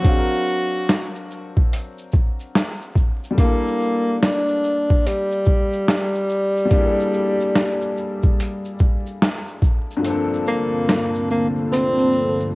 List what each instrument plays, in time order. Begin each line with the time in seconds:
Already playing: upright piano F#3, tenor saxophone F#4
0.01 upright piano C4 D4, kick, closed hi-hat, shaker
0.08 upright piano G#4 F5
0.18 upright piano A#4
0.34 shaker
0.47 shaker
0.89 snare, closed hi-hat, shaker
1.15 shaker
1.31 shaker
1.57 kick
1.73 closed hi-hat, shaker
1.98 shaker
2.12 kick, shaker
2.40 shaker
2.55 snare, closed hi-hat, shaker
2.82 shaker
2.95 kick, shaker
3.24 shaker
3.31 upright piano G3 A3
3.38 tenor saxophone A#3, upright piano A#3 D4 E4, kick, closed hi-hat, shaker
3.44 upright piano A4
3.67 shaker
3.80 shaker
4.23 tenor saxophone D4, snare, closed hi-hat, shaker
4.48 shaker
4.64 shaker
4.90 kick
5.07 tenor saxophone G3, closed hi-hat, shaker
5.31 shaker
5.45 kick, shaker
5.73 shaker
5.88 snare, closed hi-hat, shaker
6.15 shaker
6.29 shaker
6.57 shaker
6.65 upright piano G3 A#3
6.71 upright piano D4, kick, closed hi-hat, shaker
6.76 upright piano E4 G#4
6.86 upright piano A4
7.00 shaker
7.13 shaker
7.40 shaker
7.56 snare, closed hi-hat, shaker
7.81 shaker
7.97 shaker
8.23 kick, shaker
8.40 closed hi-hat, shaker
8.65 shaker
8.79 kick, shaker
9.06 shaker
9.22 snare, closed hi-hat, shaker
9.48 shaker
9.62 kick, shaker
9.91 shaker
9.97 upright piano G2 F3
10.02 analog synth pad G2 D3 A#3 C4 F4 A4, upright piano A3 C4, closed hi-hat, shaker
10.08 upright piano A#3 D4 A4
10.34 shaker
10.45 shaker
10.47 tenor saxophone A#3, shaker
10.74 shaker
10.87 snare, closed hi-hat, shaker
10.89 shaker
11.15 shaker
11.30 tenor saxophone A#3, shaker
11.57 shaker
11.72 tenor saxophone C4, closed hi-hat, shaker
11.73 shaker
11.98 shaker
12.13 shaker
12.39 shaker